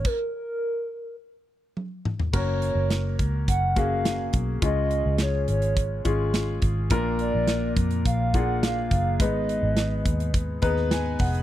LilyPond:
<<
  \new Staff \with { instrumentName = "Soft synth lead" } { \time 4/4 \key ges \major \tempo 4 = 105 bes'8 bes'4. r2 | des''4. r8 ges''8 f''4 r8 | ees''4 des''8 des''4 r4. | r8 d''4 r8 f''8 ges''8 f''4 |
ees''2 r2 | }
  \new Staff \with { instrumentName = "Grand piano" } { \time 4/4 \key ges \major << { r1 | r1 | des4. r2 r8 | bes,4. r2 r8 |
aes,4. r4 bes''8 aes''8 ges''8 | } \\ { r1 | <bes des' ges' bes'>4. r4 <bes des' ges' aes'>4 r8 | <aes des' f' aes'>4. r4 <aes des' f' aes'>4 r8 | <bes d' f' bes'>4. r4 <bes d' f' aes'>4 r8 |
<ces' ees' aes' ces''>4. r4 <ces' ees' aes' ces''>4 r8 | } >> }
  \new Staff \with { instrumentName = "Fingered electric bass" } { \clef bass \time 4/4 \key ges \major r1 | ges,,8. ges,,8. des,8 ges,,4. ces,8 | des,8. des,8. aes,,4 aes,,4 aes,,8 | bes,,8. bes,,8. f,8 bes,,4. ges,,8 |
aes,,8. aes,,8. ees,4 ees,4 f,,8 | }
  \new DrumStaff \with { instrumentName = "Drums" } \drummode { \time 4/4 <cymc bd>4 r4 r4 tommh8 toml16 tomfh16 | <cymc bd>8 hh8 <hh sn>8 <hh bd>8 <hh bd>8 <hh bd>8 <hh sn>8 <hh bd>8 | <hh bd>8 hh8 <hh sn>8 hh16 hh16 <hh bd>8 <hh bd>8 <hh sn>8 <hh bd>8 | <hh bd>8 hh8 <hh sn>8 <hh bd>16 hh16 <hh bd>8 <hh bd>8 <hh sn>8 <hh bd>8 |
<hh bd>8 hh8 <hh sn>8 <hh bd>16 hh16 <hh bd>8 <hh bd>16 sn16 <hh sn>8 <hho bd>16 hh16 | }
>>